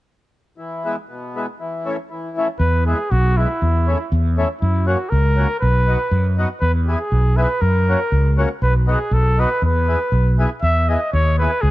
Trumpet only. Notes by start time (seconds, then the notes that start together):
2.59 B4
2.86 G#4
3.11 F#4
3.37 E4
4.61 E4
4.87 F#4
5.09 A#4
5.60 B4
6.59 B4
6.86 G#4
7.36 B4
7.61 A#4
8.62 B4
8.90 G#4
9.13 A4
9.40 B4
9.65 B4
10.62 E5
10.88 D#5
11.13 C#5
11.38 B4
11.61 G#4